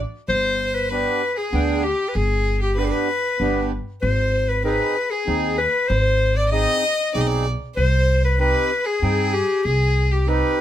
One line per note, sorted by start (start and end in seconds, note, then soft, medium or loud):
0.28 1.03 G1 medium
0.28 0.91 C5 medium
0.28 0.76 C5 loud
0.75 0.90 B4 medium
0.90 1.22 B3 medium
0.90 1.22 D4 medium
0.90 1.22 G4 medium
0.90 1.36 B4 medium
0.90 1.39 B4 medium
1.37 1.84 G#4 medium
1.37 1.85 G#4 medium
1.52 1.90 D2 medium
1.52 1.84 B3 medium
1.52 1.84 D4 medium
1.52 1.84 G5 medium
1.83 2.16 G4 medium
1.83 2.10 G4 medium
2.08 2.18 B4 medium
2.14 2.90 G1 medium
2.14 2.60 G#4 medium
2.14 2.62 G#4 medium
2.61 2.75 G4 medium
2.61 2.80 G4 medium
2.76 3.08 B3 medium
2.76 3.09 D4 medium
2.76 3.09 G4 medium
2.76 2.89 B4 medium
2.76 2.86 B4 medium
2.85 2.93 G#4 medium
2.90 3.66 B4 medium
2.90 3.71 B4 medium
3.40 3.77 G1 medium
3.40 3.71 B3 medium
3.40 3.71 D4 medium
3.40 3.72 G4 medium
4.02 4.78 G#1 medium
4.02 4.51 C5 medium
4.02 4.50 C5 medium
4.49 4.64 B4 medium
4.64 4.96 C4 medium
4.64 4.96 D#4 medium
4.64 4.96 G#4 medium
4.64 5.12 B4 medium
4.64 5.13 B4 medium
5.10 5.57 G#4 medium
5.10 5.60 G#4 medium
5.27 5.65 D#2 medium
5.27 5.58 C4 medium
5.27 5.58 D#4 medium
5.27 5.59 G#4 medium
5.58 5.90 B4 medium
5.58 5.88 B4 medium
5.88 6.65 G#1 medium
5.88 5.99 B4 medium
5.88 6.38 C5 loud
5.99 6.35 C5 medium
6.36 6.49 D5 medium
6.36 6.51 D5 medium
6.49 6.83 C4 medium
6.49 6.84 D#4 medium
6.49 6.84 G#4 medium
6.49 7.10 D#5 loud
6.49 7.42 D#5 medium
7.14 7.53 B1 medium
7.14 7.46 C4 medium
7.14 7.46 D#4 medium
7.14 7.47 G#4 medium
7.14 7.22 D5 medium
7.21 7.28 D#5 medium
7.27 7.45 D5 medium
7.75 8.53 C2 medium
7.75 8.26 C5 medium
7.75 8.21 C5 loud
8.25 8.39 B4 medium
8.39 8.71 C4 medium
8.39 8.71 D#4 medium
8.39 8.72 G4 medium
8.39 8.86 B4 medium
8.39 8.88 B4 medium
8.85 9.65 G#4 medium
8.85 9.35 G#4 medium
9.02 9.40 G2 medium
9.02 9.34 C4 medium
9.02 9.34 D#4 medium
9.02 9.34 G5 medium
9.33 9.66 G4 medium
9.65 10.40 C2 medium
9.65 10.14 G#4 medium
9.65 10.13 G#4 medium
10.11 10.30 G4 medium
10.27 10.59 C4 medium
10.27 10.59 D#4 medium
10.27 10.60 G4 medium
10.27 10.61 B4 medium